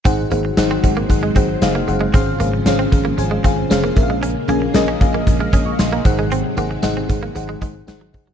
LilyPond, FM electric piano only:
<<
  \new Staff \with { instrumentName = "FM electric piano" } { \time 4/4 \key aes \mixolydian \tempo 4 = 115 << { r1 | r1 | r2 r16 f'''16 ees'''16 des'''16 c'''16 bes''8 r16 | r1 | } \\ { <ees' aes' c'' ges''>8 <ees' aes' c'' ges''>8 <ees' aes' c'' ges''>8 <ees' aes' c'' ges''>8 <ees' aes' c'' ges''>8 <ees' aes' c'' ges''>8 <ees' aes' c'' f''>8 <ees' aes' c'' ges''>8 | <des' aes' c'' f''>8 <des' aes' c'' f''>8 <des' aes' c'' f''>8 <des' aes' c'' f''>8 <des' aes' c'' aes''>8 <des' aes' c'' f''>8 <des' aes' c'' f''>8 <des' aes' bes' e'' f''>8~ | <des' aes' bes' e'' f''>8 <des' aes' bes' aes''>8 <des' aes' bes' ees''>8 <des' aes' bes' f''>8 r4. <ees' aes' c'' ges''>8~ | <ees' aes' c'' ges''>8 <ees' aes' c'' ges''>8 <ees' aes' c'' ges''>8 <ees' aes' c'' ges''>8 <ees' aes' c'' ges''>8 <ees' aes' c'' ges''>8 <ees' aes' c'' ges''>8 <ees' aes' c'' ges''>8 | } >> }
  \new Staff \with { instrumentName = "FM electric piano" } { \clef bass \time 4/4 \key aes \mixolydian aes,4. r2 r8 | aes,4. r2 bes,8~ | bes,4 r2 r8 aes,8~ | aes,4 r2. | }
>>